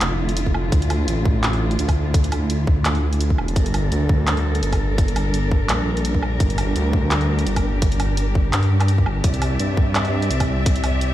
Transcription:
0.00 0.71 F1 medium
0.00 3.52 D3 medium
0.00 3.52 A3 medium
0.00 3.52 E4 medium
0.00 3.52 F4 medium
0.00 clap loud
0.00 closed hi-hat medium
0.29 closed hi-hat soft
0.37 closed hi-hat medium
0.46 kick medium
0.54 low woodblock medium
0.72 1.06 D2 loud
0.72 kick loud
0.72 closed hi-hat medium
0.82 closed hi-hat soft
0.90 open hi-hat medium
0.90 low woodblock medium
1.08 1.78 A1 loud
1.08 closed hi-hat medium
1.25 kick loud
1.44 clap loud
1.44 open hi-hat medium
1.53 open hi-hat soft
1.71 closed hi-hat soft
1.79 2.84 D2 medium
1.79 closed hi-hat medium
1.88 kick medium
1.88 open hi-hat medium
1.88 low woodblock medium
2.14 kick loud
2.14 closed hi-hat medium
2.24 closed hi-hat soft
2.32 open hi-hat medium
2.32 low woodblock medium
2.50 closed hi-hat medium
2.67 kick loud
2.85 3.37 D2 loud
2.85 clap loud
2.85 closed hi-hat medium
2.95 open hi-hat soft
3.13 closed hi-hat soft
3.21 closed hi-hat medium
3.30 kick medium
3.38 3.55 E1 loud
3.38 low woodblock medium
3.48 closed hi-hat soft
3.56 3.90 G1 medium
3.56 9.20 G3 medium
3.56 9.20 D4 medium
3.56 6.38 A4 medium
3.56 9.21 A#4 medium
3.56 kick loud
3.56 closed hi-hat medium
3.66 closed hi-hat soft
3.74 open hi-hat medium
3.74 low woodblock medium
3.92 4.62 D2 loud
3.92 closed hi-hat medium
4.09 kick loud
4.27 clap loud
4.27 open hi-hat medium
4.37 open hi-hat soft
4.55 closed hi-hat soft
4.63 5.68 G1 medium
4.63 closed hi-hat medium
4.72 kick medium
4.72 open hi-hat medium
4.72 low woodblock soft
4.98 kick loud
4.98 closed hi-hat medium
5.08 closed hi-hat soft
5.16 open hi-hat medium
5.16 low woodblock medium
5.34 closed hi-hat medium
5.51 kick loud
5.69 6.39 A#1 loud
5.69 clap loud
5.69 closed hi-hat medium
5.97 closed hi-hat soft
6.05 closed hi-hat medium
6.14 kick medium
6.23 low woodblock medium
6.40 6.74 G1 medium
6.40 11.14 G4 medium
6.40 kick loud
6.40 closed hi-hat medium
6.50 closed hi-hat soft
6.58 open hi-hat medium
6.58 low woodblock medium
6.76 7.46 D2 loud
6.76 closed hi-hat medium
6.93 kick loud
7.11 clap loud
7.11 open hi-hat medium
7.21 open hi-hat soft
7.39 closed hi-hat soft
7.47 8.52 G1 medium
7.47 closed hi-hat medium
7.56 kick medium
7.56 open hi-hat medium
7.56 low woodblock medium
7.82 kick loud
7.82 closed hi-hat medium
7.92 closed hi-hat soft
8.00 open hi-hat medium
8.00 low woodblock medium
8.17 closed hi-hat medium
8.35 kick loud
8.53 9.05 G2 loud
8.53 clap loud
8.53 closed hi-hat medium
8.63 open hi-hat soft
8.80 clap soft
8.80 closed hi-hat soft
8.80 low woodblock medium
8.88 closed hi-hat medium
8.98 kick medium
9.06 9.23 G1 loud
9.06 low woodblock medium
9.24 9.58 C2 loud
9.24 11.14 C4 medium
9.24 11.14 D5 medium
9.24 11.14 E5 medium
9.24 kick loud
9.24 closed hi-hat medium
9.34 closed hi-hat soft
9.42 open hi-hat medium
9.42 low woodblock medium
9.59 10.29 G2 loud
9.59 closed hi-hat medium
9.77 kick loud
9.95 clap loud
9.95 open hi-hat medium
10.05 open hi-hat soft
10.22 closed hi-hat soft
10.31 11.14 C2 loud
10.31 closed hi-hat medium
10.40 kick medium
10.40 open hi-hat medium
10.40 low woodblock medium
10.66 kick loud
10.66 closed hi-hat medium
10.76 closed hi-hat soft
10.84 open hi-hat medium
10.84 low woodblock medium
11.01 closed hi-hat medium

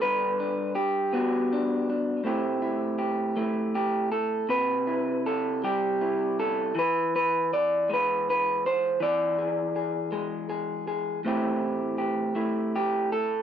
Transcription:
0.00 2.23 G2 medium
0.00 0.77 A4 medium
0.00 0.75 B4 loud
0.40 1.51 D4 soft
0.75 1.87 G4 medium
1.13 2.20 B3 medium
1.13 2.25 F#4 medium
1.53 1.88 D4 soft
1.90 2.22 D4 soft
2.24 4.43 A2 medium
2.24 3.36 A3 soft
2.24 4.44 C4 soft
2.24 2.62 E4 soft
2.24 2.98 G4 soft
2.62 3.37 E4 soft
2.99 3.73 G4 soft
3.37 4.44 A3 medium
3.37 4.87 E4 soft
3.75 4.11 G4 medium
4.12 4.49 A4 medium
4.49 6.75 C3 medium
4.49 5.25 B4 medium
4.87 6.01 E4 soft
5.26 5.63 A4 medium
5.64 6.72 G3 medium
5.64 6.39 G4 medium
6.01 7.56 E4 soft
6.40 6.77 A4 medium
6.75 9.00 E3 medium
6.75 7.14 B4 medium
7.16 7.53 B4 medium
7.53 7.90 D5 medium
7.89 8.97 G#3 medium
7.94 8.29 B4 medium
8.30 8.66 B4 medium
8.66 9.02 C5 medium
9.00 12.50 E3 medium
9.00 11.25 D5 medium
9.38 9.75 G#4 soft
9.76 10.11 G#4 soft
10.12 11.20 G#3 medium
10.12 10.48 G#4 soft
10.50 10.86 G#4 soft
10.88 11.20 G#4 soft
11.25 13.42 A2 medium
11.25 12.34 A3 soft
11.25 13.42 C4 soft
11.25 12.35 E4 soft
11.25 11.98 G4 soft
11.98 12.75 G4 soft
12.35 13.42 A3 medium
12.35 13.42 E4 soft
12.76 13.12 G4 medium
13.12 13.42 A4 medium

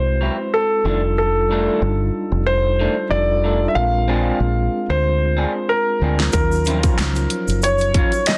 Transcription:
0.00 0.29 C2 medium
0.00 0.87 G#3 medium
0.00 0.87 C4 medium
0.00 0.87 E4 medium
0.00 0.87 F#4 medium
0.00 0.86 B4 medium
0.00 0.55 C5 medium
0.00 0.86 C5 medium
0.21 0.36 F#3 medium
0.21 0.36 C4 medium
0.21 0.37 E4 medium
0.54 1.17 A4 medium
0.84 1.67 F1 medium
0.84 1.00 D#3 medium
0.84 1.39 G3 medium
0.84 1.01 A3 medium
0.84 1.40 D4 medium
0.84 1.01 D4 medium
0.84 1.40 D#4 medium
0.84 1.41 F4 medium
0.84 1.41 A4 medium
1.18 2.43 A4 medium
1.49 1.80 D#3 medium
1.49 2.58 G3 medium
1.49 1.80 A3 medium
1.49 2.58 D4 medium
1.49 1.81 D4 medium
1.49 2.59 D#4 medium
1.49 2.59 F4 medium
1.49 2.60 A4 medium
1.82 2.09 G1 medium
2.32 2.87 F1 medium
2.46 3.07 C5 medium
2.79 2.94 D#3 medium
2.79 2.95 A3 medium
2.79 2.95 D4 medium
3.09 3.66 F1 medium
3.09 3.37 G3 medium
3.09 3.38 D4 medium
3.09 3.38 D#4 medium
3.09 3.39 F4 medium
3.09 3.39 A4 medium
3.09 3.65 D5 medium
3.42 3.59 D#3 medium
3.42 3.70 G3 medium
3.42 3.59 A3 medium
3.42 3.70 D4 medium
3.42 3.59 D4 medium
3.42 3.71 D#4 medium
3.42 3.71 F4 medium
3.42 3.72 A4 medium
3.68 3.75 E5 medium
3.74 4.30 A#1 medium
3.74 4.02 G#3 medium
3.74 4.03 C4 medium
3.74 4.03 D4 medium
3.74 4.03 F4 medium
3.74 4.04 A#4 medium
3.74 4.85 F5 medium
4.07 5.16 G#3 medium
4.07 4.38 C4 medium
4.07 5.17 C4 medium
4.07 4.38 D4 medium
4.07 5.17 D4 medium
4.07 5.18 F4 medium
4.07 4.38 G#4 medium
4.07 5.18 G#4 medium
4.40 4.67 A#1 medium
4.89 5.44 D2 medium
4.89 5.71 C5 medium
5.37 5.52 C4 medium
5.37 5.52 D4 medium
5.37 5.53 G#4 medium
5.69 6.29 A#4 medium
6.00 6.29 D2 medium
6.00 6.28 G#3 medium
6.00 6.29 C4 medium
6.00 6.17 C4 medium
6.00 6.29 D4 medium
6.00 6.17 D4 medium
6.00 6.30 F4 medium
6.00 6.18 G#4 medium
6.00 6.30 C5 medium
6.20 snare medium
6.33 6.89 D#2 medium
6.33 6.60 F#3 medium
6.33 6.61 C#4 medium
6.33 6.61 D#4 medium
6.33 6.62 F4 medium
6.33 7.58 A#4 medium
6.33 6.62 A#4 medium
6.33 kick loud
6.33 closed hi-hat medium
6.33 shaker medium
6.52 shaker soft
6.65 6.73 F3 medium
6.65 6.78 F3 medium
6.65 6.79 C4 medium
6.65 7.75 C#4 medium
6.65 7.75 D#4 medium
6.65 6.79 E4 medium
6.65 7.76 F4 medium
6.65 closed hi-hat medium
6.65 shaker soft
6.69 7.78 F#3 medium
6.69 7.76 C5 medium
6.78 6.96 F#3 medium
6.78 6.96 C#4 medium
6.78 6.96 F4 medium
6.83 kick loud
6.83 closed hi-hat soft
6.83 shaker soft
6.98 7.26 C#2 loud
6.98 finger snap medium
6.98 snare loud
6.98 clap medium
6.98 closed hi-hat medium
6.98 shaker medium
7.15 closed hi-hat soft
7.15 shaker soft
7.30 closed hi-hat medium
7.48 8.03 F#1 medium
7.48 closed hi-hat soft
7.48 shaker soft
7.62 8.29 C#5 medium
7.62 closed hi-hat medium
7.62 shaker medium
7.78 closed hi-hat soft
7.78 shaker soft
7.94 8.10 F#3 medium
7.94 8.11 C#4 medium
7.94 8.11 F4 medium
7.94 kick medium
7.94 closed hi-hat medium
8.12 closed hi-hat soft
8.12 shaker soft
8.26 8.38 D#5 medium
8.26 finger snap medium
8.26 snare loud
8.26 clap medium
8.26 closed hi-hat medium
8.26 shaker medium

